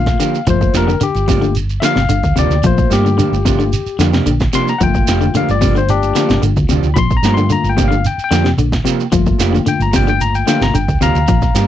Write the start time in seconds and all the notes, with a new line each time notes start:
Already playing: A#1 D3 A3 A#3 F4 F5
0.06 kick, snare, closed hi-hat, shekere
0.20 D3 F3 A#3 G4, closed hi-hat, shekere
0.35 shekere
0.47 G1 F3 A3 A#3 F4 C5, kick, closed hi-hat, shekere
0.61 kick, shekere
0.73 F1 F3 A#3 D4 G4 A#4, snare, closed hi-hat, shekere
0.88 D3, snare, shekere
1.01 D3 G4, muted fingered electric bass stroke, closed hi-hat, shekere
1.15 G1, closed hi-hat, shekere
1.27 C3 F3 A3 A#3 D4 F4 G4, muted clean electric guitar stroke, kick, open hi-hat, shekere
1.42 D3, closed hi-hat, shekere
1.55 closed hi-hat, shekere
1.69 closed hi-hat, shekere
1.80 D3 F3 A#3 D4 G4 E5, snare, closed hi-hat, shekere
1.85 F5
1.96 G1 C3, snare, closed hi-hat, shekere
2.09 G1 D3, closed hi-hat, shekere
2.23 D2, kick, closed hi-hat, shekere
2.36 D2 C3 F3 A#3 D4 G4 D5, closed hi-hat, shekere
2.50 D2, snare, closed hi-hat, shekere
2.63 A#1 F3 A3 A#3 F4 C5, kick, closed hi-hat, shekere
2.78 kick, shekere
2.90 G2 A#3 D4 G4, snare, closed hi-hat, shekere
3.05 D3, closed hi-hat, shekere
3.17 D3 F3 A#3 D4 G4, closed hi-hat, shekere
3.32 G1, shekere
3.45 C3 F3 A3 A#3 D4 F4 G4, kick, closed hi-hat, shekere
3.59 D3, closed hi-hat, shekere
3.73 closed hi-hat, shekere
3.86 muted fingered electric bass stroke, shekere
3.99 F2 D3 F3 A#3 D4 G4, snare, closed hi-hat, shekere
4.13 C3 A#3 D4 G4, snare, closed hi-hat, shekere
4.26 A#1 D3, closed hi-hat, shekere
4.40 kick, snare, closed hi-hat, shekere
4.53 C3 F3 A#3 D4 G4 C6, closed hi-hat, shekere
4.68 A#5, snare, shekere
4.78 G1 F3 A3 A#3 F4 F#5, kick, closed hi-hat, shekere
4.83 G5
4.95 kick, shekere
5.07 F1 F3 A#3 D4 G4, snare, closed hi-hat, shekere
5.21 D3, shekere
5.35 D3 F3 A#3 D4 G4 F5, muted fingered electric bass stroke, closed hi-hat, shekere
5.49 G1 D5, closed hi-hat, shekere
5.61 C3 F3 A#3 D4 G4, kick, open hi-hat, shekere
5.75 D3 C5, closed hi-hat, shekere
5.89 D4 G4, closed hi-hat, shekere
6.03 closed hi-hat, shekere
6.15 D3 F3 A#3 D4 G4, snare, closed hi-hat, shekere
6.29 G1 C3 A#3 D4 G4, snare, closed hi-hat, shekere
6.42 G1 D3, closed hi-hat, shekere
6.56 D2, kick, closed hi-hat, shekere
6.69 D2 C3 F3 D4 G4, muted clean electric guitar stroke, closed hi-hat, shekere
6.83 D2, closed hi-hat, shekere
6.94 A#1 F3 B5, kick, closed hi-hat, shekere
6.98 C6
7.11 kick, shekere
7.17 A#5
7.23 G2 F3 A3 A#3 D4 F4 G4, snare, closed hi-hat, shekere
7.34 D3 C6, shekere
7.38 closed hi-hat
7.50 D3 A#5, closed hi-hat, shekere
7.64 G1, shekere
7.69 G5
7.77 C3 F3 A#3 D4 G4, kick, snare, closed hi-hat, shekere
7.88 D3 F5
7.92 closed hi-hat, shekere
8.05 G5, closed hi-hat, shekere
8.18 muted fingered electric bass stroke, shekere
8.24 G5
8.31 F2 D3 F3 A#3 D4 G4, snare, closed hi-hat, shekere
8.44 C3, snare, closed hi-hat, shekere
8.57 A#1 D3, closed hi-hat, shekere
8.72 kick, snare, closed hi-hat, shekere
8.84 C3 F3 A#3 G4, muted clean electric guitar stroke, closed hi-hat, shekere
9.00 shekere
9.12 G1 F3 A3 A#3 F4, kick, closed hi-hat, shekere
9.26 kick, shekere
9.39 F1 F3 A#3 D4 G4, snare, closed hi-hat, shekere
9.53 D3, snare, shekere
9.66 D3 G5, muted fingered electric bass stroke, closed hi-hat, shekere
9.80 G1 A#5, closed hi-hat, shekere
9.93 C3 F3 A#3 D4 G4 G5, kick, snare, open hi-hat, shekere
10.07 D3 G5, closed hi-hat, shekere
10.21 A#5, closed hi-hat, shekere
10.35 G5, closed hi-hat, shekere
10.46 D3 F3 A3 A#3 D4 F4 G4 G5, snare, closed hi-hat, shekere
10.61 G1 C3 A#5, snare, closed hi-hat, shekere
10.74 G1 D3 G5, closed hi-hat, shekere
10.88 D2, kick, closed hi-hat, shekere
11.01 D2 C3 F3 A#3 D4 G4 F5 A#5, closed hi-hat, shekere
11.15 D2, closed hi-hat, shekere
11.28 A#1 F3, kick, closed hi-hat, shekere
11.42 kick, snare, shekere
11.54 G2 A#3 D4 G4, snare, closed hi-hat, shekere